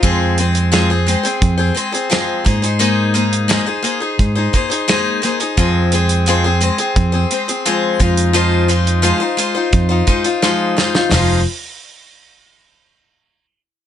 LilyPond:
<<
  \new Staff \with { instrumentName = "Steel-string acoustic guitar" } { \time 4/4 \key f \minor \tempo 4 = 87 <f aes c' aes' c''>8 <aes c' aes' c''>8 <f aes c' aes' c''>16 <c' aes' c''>16 <aes c' aes' c''>16 <c' aes' c''>8 <c' aes' c''>16 <aes c' aes' c''>16 <c' aes' c''>16 <f aes c' aes' c''>8 <bes ees' aes' c''>16 <ees' aes' c''>16 | <aes bes ees' aes' c''>8 <bes ees' aes' c''>8 <aes bes ees' aes' c''>16 <ees' aes' c''>16 <bes ees' aes' c''>16 <ees' aes' c''>8 <ees' aes' c''>16 <bes ees' aes' c''>16 <ees' aes' c''>16 <aes bes ees' aes' c''>8 <bes ees' aes' c''>16 <ees' aes' c''>16 | <f aes c' aes' c''>8 <aes c' aes' c''>8 <f aes c' aes' c''>16 <c' aes' c''>16 <aes c' aes' c''>16 <c' aes' c''>8 <c' aes' c''>16 <aes c' aes' c''>16 <c' aes' c''>16 <f aes c' aes' c''>8 <aes ees' f' c''>8 | <f aes ees' f' c''>8 <aes ees' f' c''>8 <f aes ees' f' c''>16 <ees' f' c''>16 <aes ees' f' c''>16 <ees' f' c''>8 <ees' f' c''>16 <aes ees' f' c''>16 <ees' f' c''>16 <f aes ees' f' c''>8 <aes ees' f' c''>16 <ees' f' c''>16 |
<f aes ees' f' c''>8 r2. r8 | }
  \new Staff \with { instrumentName = "Fingered electric bass" } { \clef bass \time 4/4 \key f \minor f,2 f,8 r4 aes,8~ | aes,4. r8 aes,8 r4. | f,2 f,8 r4 f,8~ | f,4. r8 f,8 r4. |
f,,8 r2. r8 | }
  \new DrumStaff \with { instrumentName = "Drums" } \drummode { \time 4/4 <hh bd>8 hh16 hh16 <hh sn>8 hh16 hh16 <hh bd>8 hh16 hh16 <hh sn>8 <hh bd>16 hh16 | hh8 hh16 hh16 <hh sn>8 hh8 <hh bd>8 <hh bd>16 hh16 <hh sn>8 <hh sn>16 hh16 | <hh bd>8 hh16 hh16 hh8 hh16 hh16 <hh bd>8 hh16 hh16 hh8 <hh bd>16 hh16 | hh8 hh16 hh16 hh8 hh8 <hh bd>8 <hh bd>16 hh16 sn8 sn16 sn16 |
<hho sn tomfh>4 r4 r4 r4 | }
>>